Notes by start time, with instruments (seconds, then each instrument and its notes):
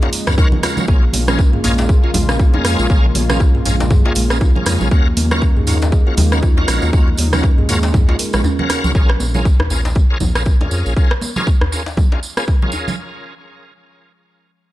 Already playing: analog synth pad C#3 G#3 D#4
0.02 tonewheel organ C#4 F4 F#4 A#4, kalimba F4, djembe slap
0.13 open hi-hat, tambourine
0.27 analog synth bass F#2, kalimba F3, tonewheel organ C#4 F4 F#4 A#4, kick, cross-stick, tambourine, high conga
0.38 tonewheel organ C#4 F4 F#4 A#4, kalimba A#4, kick, tambourine, djembe bass
0.52 high conga, low conga
0.63 tonewheel organ C#4 F4 F#4 A#4, kalimba F4, cross-stick, open hi-hat, tambourine, djembe tone
0.77 kalimba F3, tambourine, low conga
0.88 analog synth bass A#1, analog synth pad C#3 A#3 F4, kalimba A#3, tonewheel organ C#4 F4 G#4 A#4, kick, tambourine
1.03 kalimba F3
1.13 analog synth bass A#1, kalimba A#3, open hi-hat, tambourine, high conga
1.27 kalimba C#4, tonewheel organ C#4 F4 G#4 A#4, cross-stick, tambourine, high conga, low conga
1.39 kick, tambourine
1.53 analog synth bass A#1, kalimba G#4, mid tom
1.64 analog synth bass A#1, kalimba A#3, tonewheel organ C#4 F4 G#4 A#4, mid tom, open hi-hat, tambourine, djembe tone, high conga
1.78 tambourine, djembe slap
1.89 kalimba G#4, kick, tambourine
2.04 tonewheel organ C#4 F4 G#4 A#4, kalimba F4
2.14 analog synth bass A#1, kalimba G#3, open hi-hat, tambourine, djembe tone, high conga, djembe bass, low conga
2.29 kalimba C#4, tonewheel organ C#4 F4 G#4 A#4, cross-stick, tambourine
2.39 kalimba F4, kick, tambourine
2.54 tonewheel organ C#4 F4 G#4 A#4, djembe slap, djembe tone, high conga, djembe bass
2.65 analog synth bass F2, kalimba A#3, cross-stick, open hi-hat, tambourine
2.79 analog synth bass A#1, kalimba F4, tambourine, djembe tone
2.90 analog synth bass A#1, kalimba A#3, tonewheel organ C#4 F4 G#4 A#4, kick, tambourine
3.04 kalimba F3
3.15 analog synth bass A#1, kalimba A#3, open hi-hat, tambourine, high conga
3.29 kalimba C#4, tonewheel organ C#4 F4 G#4 A#4, cross-stick, tambourine, high conga, low conga
3.40 kick, tambourine
3.55 analog synth bass A#1, kalimba G#4, mid tom
3.65 analog synth bass A#1, kalimba A#3, tonewheel organ C#4 F4 G#4 A#4, mid tom, open hi-hat, tambourine, djembe tone
3.80 tambourine, djembe slap
3.90 kalimba G#4, kick, mid tom, tambourine, djembe tone, high conga, low conga
4.05 tonewheel organ C#4 F4 G#4 A#4, kalimba F4, djembe slap
4.15 analog synth bass A#1, kalimba G#3, open hi-hat, tambourine
4.30 tonewheel organ C#4 F4 G#4 A#4, kalimba C#4, cross-stick, tambourine, high conga
4.41 kalimba F4, kick, tambourine, djembe bass
4.55 tonewheel organ C#4 F4 G#4 A#4, high conga, low conga
4.66 analog synth bass F2, kalimba A#3, cross-stick, open hi-hat, tambourine, djembe tone
4.81 analog synth bass A#1, kalimba F4, tambourine, low conga
4.91 analog synth bass D#2, kalimba A#3, analog synth pad A#3 D#4, tonewheel organ C#4 F4 F#4 A#4, kick, tambourine
5.06 kalimba F3
5.17 analog synth bass D#2, kalimba A#3, open hi-hat, tambourine, high conga
5.31 kalimba C#4, tonewheel organ C#4 F4 F#4 A#4, cross-stick, tambourine, high conga, low conga
5.42 kick, tambourine
5.56 analog synth bass D#2, kalimba G#4, mid tom
5.67 analog synth bass D#2, kalimba A#3, tonewheel organ C#4 F4 F#4 A#4, mid tom, open hi-hat, tambourine, djembe tone, high conga
5.82 tambourine, djembe slap
5.92 kalimba G#4, kick, tambourine
6.07 tonewheel organ C#4 F4 F#4 A#4, kalimba F4
6.17 analog synth bass D#2, kalimba G#3, open hi-hat, tambourine, high conga, djembe tone, low conga, djembe bass
6.32 kalimba C#4, tonewheel organ C#4 F4 F#4 A#4, cross-stick, tambourine
6.42 kalimba F4, kick, tambourine
6.57 tonewheel organ C#4 F4 F#4 A#4, djembe slap, djembe tone, high conga, djembe bass
6.68 analog synth bass A#1, kalimba A#3, cross-stick, open hi-hat, tambourine
6.82 analog synth bass D#2, kalimba F4, tambourine, djembe tone
6.93 analog synth bass D#2, analog synth pad G#3, kalimba A#3, tonewheel organ C#4 F4 F#4 A#4, kick, tambourine
7.08 kalimba F3
7.17 analog synth bass D#2, kalimba A#3, open hi-hat, tambourine, high conga
7.33 tonewheel organ C#4 F4 F#4 A#4, kalimba C#4, cross-stick, tambourine, high conga, low conga
7.44 kick, tambourine
7.58 analog synth bass D#2, kalimba G#4, mid tom
7.69 analog synth bass D#2, kalimba A#3, tonewheel organ C#4 F4 F#4 A#4, mid tom, open hi-hat, tambourine, djembe tone
7.83 tambourine, djembe slap
7.93 kalimba G#4, kick, mid tom, tambourine, djembe tone, high conga, low conga
8.09 analog synth bass C#2, tonewheel organ C#4 F4 F#4 A#4, kalimba F4, djembe slap
8.19 kalimba A#4, open hi-hat, tambourine
8.33 analog synth bass A#1, kalimba G#3, tonewheel organ C#4 F4 F#4 A#4, cross-stick, tambourine, high conga
8.44 kalimba C#4, tambourine, djembe bass
8.59 tonewheel organ C#4 F4 F#4 A#4, high conga, low conga
8.69 kalimba A#4, cross-stick, open hi-hat, tambourine, djembe tone
8.84 analog synth bass C#2, kalimba F3, tambourine, low conga
8.95 analog synth bass A#1, tonewheel organ C#4 F4 G#4 A#4, kick, tambourine
9.10 cross-stick
9.20 analog synth bass A#1, tambourine, high conga
9.34 tonewheel organ C#4 F4 G#4 A#4, tambourine, high conga, low conga
9.45 kick, tambourine
9.59 analog synth bass A#1, cross-stick, djembe bass
9.70 analog synth bass A#1, tonewheel organ C#4 F4 G#4 A#4, tambourine, high conga, djembe tone
9.85 tambourine, djembe slap
9.95 kick, tambourine
10.10 tonewheel organ C#4 F4 G#4 A#4
10.20 analog synth bass A#1, tambourine, djembe tone, high conga, low conga, djembe bass
10.35 tonewheel organ C#4 F4 G#4 A#4, cross-stick, tambourine
10.46 kick, tambourine
10.61 tonewheel organ C#4 F4 G#4 A#4, djembe slap, djembe tone, high conga
10.71 analog synth bass F2, tambourine
10.86 analog synth bass A#1, tambourine
10.97 tonewheel organ C#4 F4 G#4 A#4, kick, tambourine
11.11 cross-stick
11.21 tambourine, high conga
11.36 tonewheel organ C#4 F4 G#4 A#4, tambourine, high conga, low conga
11.47 kick, tambourine
11.61 cross-stick, djembe bass
11.72 tonewheel organ C#4 F4 G#4 A#4, tambourine, djembe tone
11.86 tambourine, djembe slap
11.97 kick, tambourine, high conga, djembe tone, low conga
12.12 tonewheel organ C#4 F4 G#4 A#4, djembe slap
12.23 tambourine
12.37 tonewheel organ C#4 F4 G#4 A#4, cross-stick, tambourine, high conga
12.48 kick, tambourine
12.62 tonewheel organ C#4 F4 G#4 A#4, high conga, low conga
12.72 tambourine, djembe tone
12.88 tambourine, low conga